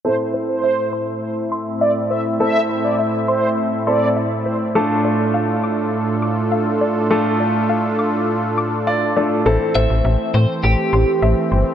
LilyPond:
<<
  \new Staff \with { instrumentName = "Synth pluck" } { \time 4/4 \key a \minor \tempo 4 = 102 a'8 c''8 e''8 c'''8 r8 c'''8 e''8 c''8 | a'8 c''8 e''8 c'''8 r8 c'''8 e''8 c''8 | a'8 d''8 f''8 d'''8 r8 d'''8 f''8 d''8 | a'8 d''8 f''8 d'''8 r8 d'''8 f''8 d''8 |
a'8 c''8 e''8 c'''8 r8 c'''8 e''8 c''8 | }
  \new Staff \with { instrumentName = "Analog polysynth" } { \time 4/4 \key a \minor c''16 r8 c''8. r4. d''16 r16 e''16 r16 | e''8 r16 d''16 r8 c''8 r8 d''8 r8 c''16 r16 | r1 | r1 |
r1 | }
  \new Staff \with { instrumentName = "Clean electric guitar" } { \time 4/4 \key a \minor r1 | r1 | r1 | r1 |
r8 e''4 c''8 g'2 | }
  \new Staff \with { instrumentName = "Grand piano" } { \time 4/4 \key a \minor << { r1 | r1 | r1 | r2. d''4 |
r1 | } \\ { <c' e' a'>1 | <c' e' a'>2~ <c' e' a'>8 <c' e' a'>4. | <a d' f' a'>1 | <a d' f' a'>2.~ <a d' f' a'>8 <a d' f' a'>8 |
<c' e' a'>1 | } >> }
  \new Staff \with { instrumentName = "Analog synth pad" } { \time 4/4 \key a \minor << { <a c' e'>1~ | <a c' e'>1 | <a d' f' a'>1~ | <a d' f' a'>1 |
<e a>1 | } \\ { a,1~ | a,1~ | a,1~ | a,1 |
r1 | } >> }
  \new Staff \with { instrumentName = "FM bass" } { \clef bass \time 4/4 \key a \minor r1 | r1 | r1 | r1 |
a,,16 r16 a,,16 a,,16 a,,16 r16 a,16 r16 a,,16 r16 a,,16 r16 a,,16 r16 g,,16 r16 | }
>>